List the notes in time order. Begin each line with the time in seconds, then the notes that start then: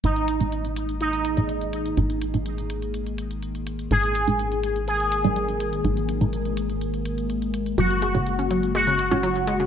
0.04 G#1 A#2 D#3 G#3 A#3 D#4 G#4, closed hi-hat
0.16 closed hi-hat
0.28 closed hi-hat
0.40 A#2 G#3 D#4, closed hi-hat
0.52 closed hi-hat
0.65 closed hi-hat
0.76 closed hi-hat
0.89 closed hi-hat
1.01 D#4, closed hi-hat
1.13 closed hi-hat
1.25 closed hi-hat
1.37 A#2 G#3 D#4, closed hi-hat
1.49 closed hi-hat
1.61 closed hi-hat
1.73 closed hi-hat
1.86 closed hi-hat
1.97 G#1 A#2 G#3 D#4, closed hi-hat
2.10 closed hi-hat
2.22 closed hi-hat
2.34 A#2 G#3 D#4, closed hi-hat
2.46 closed hi-hat
2.58 closed hi-hat
2.70 closed hi-hat
2.82 closed hi-hat
2.94 closed hi-hat
3.07 closed hi-hat
3.18 closed hi-hat
3.31 closed hi-hat
3.43 closed hi-hat
3.55 closed hi-hat
3.67 closed hi-hat
3.79 closed hi-hat
3.91 G#1 A#2 G#3 D#4 G#4 A#4, closed hi-hat
4.03 closed hi-hat
4.15 closed hi-hat
4.28 A#2 G#3 D#4, closed hi-hat
4.39 closed hi-hat
4.52 closed hi-hat
4.64 closed hi-hat
4.76 closed hi-hat
4.88 G#4, closed hi-hat
5.00 closed hi-hat
5.12 closed hi-hat
5.24 A#2 G#3 D#4, closed hi-hat
5.36 closed hi-hat
5.49 closed hi-hat
5.60 closed hi-hat
5.73 closed hi-hat
5.84 G#1 A#2 G#3 D#4, closed hi-hat
5.97 closed hi-hat
6.09 closed hi-hat
6.21 A#2 G#3 D#4, closed hi-hat
6.33 closed hi-hat
6.45 closed hi-hat
6.57 closed hi-hat
6.70 closed hi-hat
6.81 closed hi-hat
6.94 closed hi-hat
7.06 closed hi-hat
7.18 closed hi-hat
7.30 closed hi-hat
7.42 closed hi-hat
7.54 closed hi-hat
7.66 closed hi-hat
7.78 F#1 A#2 C#3 F#3 G#3 F#4, closed hi-hat
7.91 closed hi-hat
8.02 G#3, closed hi-hat
8.15 A#2 C#3 G#3 F#4, closed hi-hat
8.26 closed hi-hat
8.39 C#4, closed hi-hat
8.51 F#3, closed hi-hat
8.63 closed hi-hat
8.75 G#3 F#4, closed hi-hat
8.87 C#3, closed hi-hat
8.99 closed hi-hat
9.11 A#2 G#3 C#4 F#4, closed hi-hat
9.23 F#3, closed hi-hat
9.36 closed hi-hat
9.47 G#3, closed hi-hat
9.60 C#3, closed hi-hat